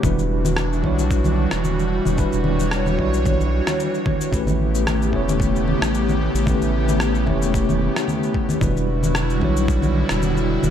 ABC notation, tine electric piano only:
X:1
M:4/4
L:1/8
Q:"Swing 16ths" 1/4=112
K:Edor
V:1 name="Tine electric piano"
[G,DEFB]3 [G,DEFc]4- [G,DEFc] | [G,DEFB]3 [G,DEFc]4- [G,DEFc] | [A,CEGB]3 [A,CEGc]4- [A,CEGc] | [A,CEGB]3 [A,CEGc]4- [A,CEGc] |
[G,DEFB]3 [G,DEFc]4- [G,DEFc] |]